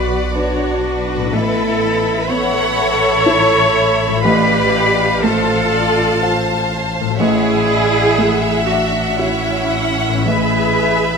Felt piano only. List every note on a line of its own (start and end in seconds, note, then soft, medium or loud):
0.00 1.29 B1 medium
0.00 0.93 B3 soft
0.35 1.29 D4 soft
0.35 1.29 B4 soft
1.33 4.21 A1 medium
2.29 3.85 B3 soft
3.26 4.20 E4 soft
3.26 4.21 C#5 soft
4.25 7.15 A1 medium
5.23 6.80 A3 medium
6.22 7.15 F4 soft
6.22 7.15 F5 medium
7.20 10.22 A1 medium
8.18 9.83 A3 medium
9.19 10.23 F#4 soft
9.19 10.23 E5 soft
10.26 11.18 A1 medium